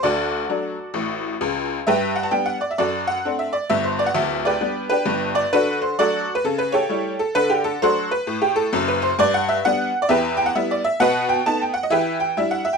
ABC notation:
X:1
M:4/4
L:1/16
Q:"Swing" 1/4=131
K:G
V:1 name="Honky-tonk piano"
[FAd]12- [FAd]2 z2 | [GBe]2 f a g f d e [FAd]2 f3 e d2 | e c d f e2 [GBd]4 [DGB]4 d2 | [DFB]2 c2 [FAd]3 B A B [GA^c]4 A2 |
B G A2 [FAc]2 B3 G A3 B c2 | d f e2 f3 d [GBe]2 g f e d e2 | [B^df]2 g2 a g f d [GBe]2 g2 e f e g |]
V:2 name="Honky-tonk piano" clef=bass
[D,,D,]4 [F,A,D]4 [A,,,A,,]4 [^C,,^C,]4 | G,,4 [G,B,D]4 F,,4 [A,CD]4 | [G,,,G,,]4 [D,,,D,,]4 [G,B,D]4 [G,,,G,,]4 | D,4 [F,A,D]4 ^C,4 [G,A,E]4 |
D,4 [F,A,D]4 A,,4 [F,,,F,,]4 | G,,4 [G,B,D]4 E,,4 [G,B,E]4 | B,,4 [A,B,^D]4 E,4 [G,=DE]4 |]